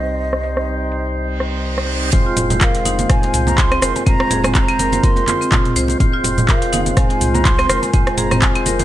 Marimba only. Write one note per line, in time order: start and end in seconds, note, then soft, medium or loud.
2.26 2.32 F4 medium
2.61 2.74 A#4 medium
2.86 2.93 D#4 medium
3.10 3.23 F5 medium
3.58 3.65 F4 medium
3.72 3.81 C4 loud
3.82 3.95 A#4 medium
4.07 4.19 C4 medium
4.31 4.43 G#4 medium
4.44 4.54 C4 medium
4.55 4.62 F4 medium
4.68 4.78 C4 loud
4.79 4.92 A#4 medium
4.93 5.03 C5 medium
5.04 5.16 A#4 medium
5.17 5.23 A#4 medium
5.28 5.35 F4 medium
5.41 5.51 C4 medium
5.52 5.65 F4 loud
5.76 5.83 C5 loud
6.14 6.19 F4 medium
6.48 6.61 A#4 medium
6.73 6.80 D#4 medium
6.97 7.10 F5 medium
7.45 7.53 F4 medium
7.59 7.68 C4 loud
7.69 7.82 A#4 medium
7.94 8.06 C4 medium
8.18 8.30 G#4 medium
8.31 8.41 C4 medium
8.42 8.49 F4 medium
8.56 8.65 C4 loud
8.66 8.79 A#4 medium
8.80 8.84 C5 medium